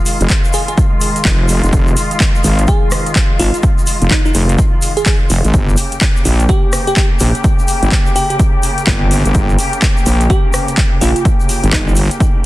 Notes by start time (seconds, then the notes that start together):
Already playing: D#3 G#3 F4
0.06 open hi-hat, shaker
0.20 F1, closed hi-hat, shaker
0.29 kick, clap, closed hi-hat, shaker
0.44 shaker
0.53 G#4, open hi-hat, shaker
0.68 G#4, closed hi-hat, shaker
0.78 kick, closed hi-hat, shaker
1.01 open hi-hat, shaker
1.16 closed hi-hat, shaker
1.25 F1, kick, clap, open hi-hat, shaker
1.49 open hi-hat, shaker
1.63 F1, closed hi-hat, shaker
1.73 F1, kick, closed hi-hat, shaker
1.87 shaker
1.97 open hi-hat, shaker
2.11 closed hi-hat, shaker
2.20 kick, clap, closed hi-hat, shaker
2.35 shaker
2.44 G#1, open hi-hat, shaker
2.59 closed hi-hat, shaker
2.68 G#4, kick, closed hi-hat, shaker
2.91 cross-stick, open hi-hat, shaker
3.06 closed hi-hat, shaker
3.16 kick, clap, closed hi-hat, shaker
3.39 G#1 F4, open hi-hat, shaker
3.54 closed hi-hat, shaker
3.63 kick, closed hi-hat, shaker
3.79 shaker
3.87 open hi-hat, shaker
4.01 F1, closed hi-hat, shaker
4.11 D#4, kick, clap, closed hi-hat, shaker
4.25 D#4, shaker
4.34 F1, open hi-hat, shaker
4.49 closed hi-hat, shaker
4.58 kick, closed hi-hat, shaker
4.82 open hi-hat, shaker
4.97 G#4, closed hi-hat, shaker
5.06 kick, clap, open hi-hat, shaker
5.30 F1, open hi-hat, shaker
5.44 G#1, closed hi-hat, shaker
5.54 G1 C#3 A#3 G4, kick, closed hi-hat, shaker
5.69 shaker
5.77 open hi-hat, shaker
5.92 closed hi-hat, shaker
6.01 kick, clap, closed hi-hat, shaker
6.16 shaker
6.25 A#1, open hi-hat, shaker
6.40 closed hi-hat, shaker
6.49 G4, kick, closed hi-hat, shaker
6.73 cross-stick, open hi-hat, shaker
6.87 G4, closed hi-hat, shaker
6.96 G4, kick, clap, closed hi-hat, shaker
7.20 A#1, open hi-hat, shaker
7.35 closed hi-hat, shaker
7.44 kick, closed hi-hat, shaker
7.59 shaker
7.68 open hi-hat, shaker
7.83 G1, closed hi-hat, shaker
7.92 kick, clap, closed hi-hat, shaker
8.06 shaker
8.16 G4, open hi-hat, shaker
8.30 G4, closed hi-hat, shaker
8.39 kick, closed hi-hat, shaker
8.63 open hi-hat, shaker
8.78 closed hi-hat, shaker
8.87 G1, kick, clap, open hi-hat, shaker
9.11 open hi-hat, shaker
9.25 G1, closed hi-hat, shaker
9.34 G1, kick, closed hi-hat, shaker
9.49 shaker
9.59 open hi-hat, shaker
9.73 closed hi-hat, shaker
9.82 kick, clap, closed hi-hat, shaker
9.97 shaker
10.06 A#1, open hi-hat, shaker
10.21 closed hi-hat, shaker
10.30 G4, kick, closed hi-hat, shaker
10.53 cross-stick, open hi-hat, shaker
10.68 closed hi-hat, shaker
10.78 kick, clap, closed hi-hat, shaker
11.01 A#1 F4, open hi-hat, shaker
11.16 closed hi-hat, shaker
11.25 kick, closed hi-hat, shaker
11.40 shaker
11.49 open hi-hat, shaker
11.63 G1, closed hi-hat, shaker
11.73 G1 D#4, kick, cross-stick, clap, closed hi-hat, shaker
11.87 D#4, shaker
11.96 open hi-hat, shaker
12.11 closed hi-hat, shaker
12.20 kick, closed hi-hat, shaker